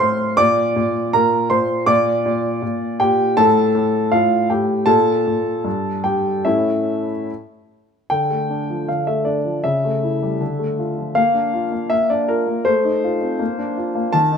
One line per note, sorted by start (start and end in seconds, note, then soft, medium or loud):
0.00 0.38 A2 medium
0.00 0.35 C5 medium
0.00 0.39 F5 medium
0.00 0.37 C6 medium
0.00 0.38 F6 loud
0.37 0.74 A#2 medium
0.37 1.09 D5 medium
0.37 1.12 D6 loud
0.76 1.12 A#2 medium
1.13 1.49 A#2 medium
1.13 1.48 A#4 medium
1.13 1.50 A#5 loud
1.50 1.85 A#2 medium
1.50 1.85 C5 medium
1.50 1.87 C6 medium
1.86 2.23 A#2 medium
1.86 2.96 D5 medium
1.86 2.99 D6 loud
2.26 2.61 A#2 medium
2.62 2.98 A#2 medium
3.00 3.36 A#2 medium
3.00 3.35 G4 medium
3.00 3.37 G5 medium
3.37 3.73 A2 medium
3.37 4.08 A4 medium
3.37 4.12 A5 loud
3.75 4.11 A2 medium
4.12 4.49 A2 medium
4.12 4.47 F4 medium
4.12 4.49 F5 medium
4.50 4.87 A2 medium
4.50 4.85 G4 soft
4.50 4.88 G5 medium
4.86 5.24 A#2 medium
4.86 6.01 A4 medium
4.86 6.04 A5 loud
5.27 5.65 A#2 soft
5.64 6.02 G2 medium
6.04 6.44 G2 soft
6.04 6.43 G4 medium
6.04 6.45 G5 medium
6.45 7.04 A2 medium
6.45 7.12 A3 soft
6.45 7.11 C#4 soft
6.45 7.25 E4 medium
6.45 7.28 E5 medium
8.10 8.88 D3 soft
8.10 8.87 G5 medium
8.31 8.61 A3 soft
8.50 8.80 D4 soft
8.70 9.00 F3 soft
8.88 9.63 D3 soft
8.88 9.07 F5 medium
9.07 9.37 A3 soft
9.07 9.26 E5 medium
9.25 9.56 D4 soft
9.25 9.64 D5 medium
9.45 9.64 F3 soft
9.64 10.39 C#3 soft
9.64 10.79 E5 medium
9.84 10.15 A3 soft
10.03 10.34 E4 soft
10.22 10.41 G3 soft
10.41 11.14 D3 soft
10.59 10.90 A3 soft
10.79 11.09 F4 soft
10.98 11.17 F3 soft
11.15 11.70 A#3 medium
11.15 11.91 F5 medium
11.34 11.65 D4 soft
11.54 11.84 F4 soft
11.72 11.88 A#3 soft
11.90 12.46 A#3 soft
11.90 12.10 E5 medium
12.10 12.41 D4 soft
12.10 12.29 D5 medium
12.28 12.59 F4 soft
12.28 12.67 A#4 medium
12.47 12.67 A#3 soft
12.65 13.38 A3 medium
12.65 13.76 C5 medium
12.84 13.15 D#4 soft
13.04 13.34 F4 soft
13.21 13.40 C4 soft
13.39 13.94 A#3 medium
13.58 13.88 D4 soft
13.77 14.07 F4 soft
13.95 14.14 A#3 soft
14.13 14.38 D#3 medium
14.13 14.38 A5 loud
14.32 14.38 D#4 soft